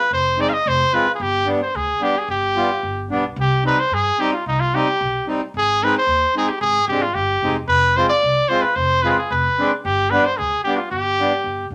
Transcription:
Already playing: B4
0.11 F1 C5
0.38 G#3 C4 D#4 D5
0.49 F5
0.53 D#5
0.66 F1 C5
0.93 G#3 C4 F4 B4
1.15 G#4
1.20 G1 G4
1.46 G3 B3 D4
1.62 C5
1.75 D2 G#4
2.01 G3 B3 D4 G4
2.18 G#4
2.28 G1 G4
2.56 G3 B3 F4
2.83 G1
3.10 B1 G3 B3 D4
3.36 C2
3.40 G4
3.64 G3 C4 D#4 B4
3.80 C5
3.91 G2 G#4
4.19 G3 C4 D#4 G4
4.33 F4
4.46 C2 D#4
4.60 F4
4.74 G3 C4 D#4 G4
5.01 B1
5.27 G3 C4 D#4
5.54 G#1 G#4
5.83 G#3 C4 D#4 B4
5.98 C5
6.07 D#2
6.36 G#3 C4 D#4 G#4
6.49 G4
6.61 G#1 G#4
6.88 G#1 G#3 C4 D4 G4
7.02 F4
7.14 G1 G4
7.42 F1 G#3 C4 D#4
7.68 F1 B4
7.96 G#3 C4 F4 C5
8.09 D5
8.23 C2
8.48 G#3 C4 F4 C5
8.62 B4
8.75 F1 C5
9.02 G#3 C4 F4 G#4 B4
9.09 B4
9.18 G#4
9.30 F1 B4
9.58 G#3 C4 D4
9.85 G1 G4
10.10 G3 B3 D4 B4
10.26 C5
10.37 D2 G#4
10.64 G3 B3 D4 G4
10.77 F4
10.91 G1 G4
11.20 G3 B3 D4
11.44 G1
11.70 F1

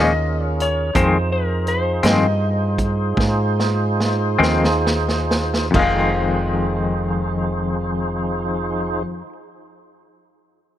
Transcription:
Already playing: D#2 A#2 F3 G#3 C#4 F4 G#4 A#4 D#5
0.45 C#5
0.60 C#5, closed hi-hat
0.93 F2 D#3 G#3 C4 D#4 F4 G#4 C5, kick, closed hi-hat
1.32 A#4
1.67 C5, closed hi-hat
2.03 F2 G2 D#3 G#3 C4 D#5, snare, closed hi-hat
2.78 kick, closed hi-hat
3.17 G#2, kick, snare
3.60 snare
4.00 snare
4.39 D#2 F2 D#3 G#3 C4
4.43 snare
4.64 snare
4.87 snare
5.09 snare
5.31 snare
5.54 snare
5.71 F1 F2 D#4 F4 G#4 C5, kick, crash
5.76 D#3 G#3 F5
5.82 C4

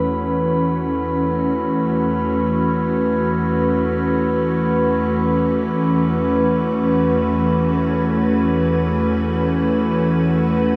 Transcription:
Already playing: E2 E3 A3 C#4 F#4 B4 B5

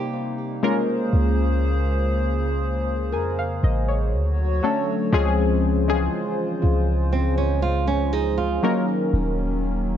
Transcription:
Already playing: C3 G3 A#3 D#4 G4 C5
0.63 C#3 G#3 A#3 C#4 F4 G#4 A#4 C5
1.13 C#2
3.12 F2 A#4 G#5
3.39 F5
3.63 A1 D#5
3.88 C#5
4.12 D2 D3 F#3 F#4 C#5
4.63 F#3 A3 C#4 D4 A4
5.12 C#2 C#3 F3 G#3 C4 C#4 F4 G#4 C5
5.88 E3 G#3 C4 C#4 G#4
5.94 F3
6.62 C#2 F4
7.12 C4
7.38 C#4
7.62 F4
7.87 C#4
8.13 D#4 G#4
8.38 F4
8.62 D#3 F#3 A#3 C#4 D#4 A#4
9.13 D#1

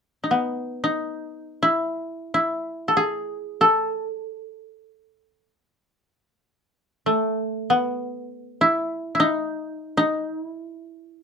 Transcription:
0.24 D#4
0.31 B3
0.84 D#4
1.63 E4
2.34 E4
2.88 A4
2.97 G#4
3.61 A4
7.06 A3
7.70 B3
8.61 E4
9.15 E4
9.20 D#4
9.97 D#4
10.42 E4

